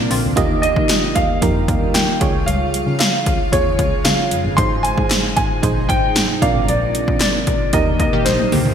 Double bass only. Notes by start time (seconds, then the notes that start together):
0.11 A#1
0.24 D2
0.37 D#2
0.77 D#3
1.16 D#2
1.42 F2
1.69 D#2
1.95 D#3
2.21 C#2
2.34 C2
2.47 C#2
2.87 C#3
3.27 C#2
3.53 D#2
3.79 C#2
4.05 C#3
4.31 F2
4.45 G1
4.58 G#1
4.98 G#2
5.37 G#1
5.63 A#1
5.90 G#1
6.16 G#2
6.42 A#1
6.55 G#1
6.68 A#1
7.08 A#2
7.47 A#1
7.73 D#2
7.87 A#1
8.13 A#2
8.26 A#1
8.53 D2